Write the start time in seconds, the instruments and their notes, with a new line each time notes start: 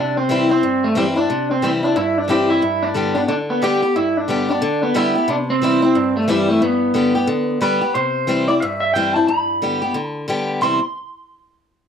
Already playing: steel-string acoustic guitar C3, clean electric guitar D4
0.17 clean electric guitar C4
0.29 steel-string acoustic guitar E3 G3 C4 E4
0.49 clean electric guitar C4, steel-string acoustic guitar C4 E4
0.63 steel-string acoustic guitar G2
0.84 clean electric guitar A3
0.95 steel-string acoustic guitar E3 G3 C4 E4, clean electric guitar G3
1.16 steel-string acoustic guitar C4 E4, clean electric guitar D4
1.30 steel-string acoustic guitar C3
1.51 clean electric guitar C4
1.62 steel-string acoustic guitar E3 G3 C4 E4, clean electric guitar C4
1.83 steel-string acoustic guitar C4 E4, clean electric guitar D4
1.96 steel-string acoustic guitar G2, clean electric guitar E4
2.18 clean electric guitar D4
2.28 steel-string acoustic guitar E3 G3 C4 E4, clean electric guitar G4
2.50 clean electric guitar E4
2.62 steel-string acoustic guitar G2
2.83 clean electric guitar D4
2.94 steel-string acoustic guitar D3 G3 B3 G4
3.15 steel-string acoustic guitar B3 G4, clean electric guitar D4
3.28 steel-string acoustic guitar D3, clean electric guitar D4
3.50 clean electric guitar B3
3.62 steel-string acoustic guitar D3 G3 B3 G4, clean electric guitar G4
3.82 steel-string acoustic guitar B3 G4
3.96 steel-string acoustic guitar G2, clean electric guitar E4
4.17 clean electric guitar D4
4.28 steel-string acoustic guitar D3 G3 B3 G4
4.49 steel-string acoustic guitar B3 G4, clean electric guitar D4
4.62 steel-string acoustic guitar D3
4.83 clean electric guitar B3
4.94 steel-string acoustic guitar D3 G3 B3 G4, clean electric guitar E4
5.15 steel-string acoustic guitar B3 G4
5.28 steel-string acoustic guitar C3, clean electric guitar D4
5.50 clean electric guitar C4
5.62 steel-string acoustic guitar E3 G3 C4 E4
5.82 clean electric guitar C4, steel-string acoustic guitar C4 E4
5.95 steel-string acoustic guitar G2
6.17 clean electric guitar A3
6.28 steel-string acoustic guitar E3 G3 C4 E4, clean electric guitar G3
6.50 clean electric guitar A3
6.62 steel-string acoustic guitar G2, clean electric guitar B3
6.94 steel-string acoustic guitar D3 G3 B3 G4
7.15 steel-string acoustic guitar B3 G4
7.27 steel-string acoustic guitar D3
7.61 steel-string acoustic guitar D3 G3 B3 G4, clean electric guitar B4
7.81 steel-string acoustic guitar B3 G4
7.94 steel-string acoustic guitar C3, clean electric guitar C5
8.27 steel-string acoustic guitar E3 G3 C4 E4
8.48 steel-string acoustic guitar C4 E4, clean electric guitar D5
8.60 steel-string acoustic guitar G2, clean electric guitar E5
8.80 clean electric guitar E5
8.94 steel-string acoustic guitar E3 G3 C4 E4, clean electric guitar G5
9.14 steel-string acoustic guitar C4 E4, clean electric guitar A5
9.27 steel-string acoustic guitar G2, clean electric guitar B5
9.62 steel-string acoustic guitar D3 G3 B3 G4
9.82 steel-string acoustic guitar B3 G4
9.94 steel-string acoustic guitar D3
10.08 clean electric guitar A5
10.28 steel-string acoustic guitar D3 G3 B3 G4
10.61 steel-string acoustic guitar C3 E3 G3 C4 E4, clean electric guitar C6